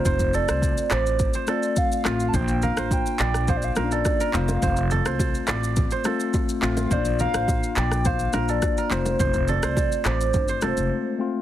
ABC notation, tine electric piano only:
X:1
M:4/4
L:1/8
Q:1/4=105
K:F
V:1 name="Tine electric piano"
[A,CF]2 z3 [A,CF]2 [A,CF] | [B,DF]3 z2 [B,_D=DF]2 [A,CF]- | [A,CF]2 z3 [A,CF]2 [A,CF] | [B,_D=DF]3 z2 [B,DF]2 [A,CF]- |
[A,CF]2 z3 [_A,=A,CF]2 [A,CF] |]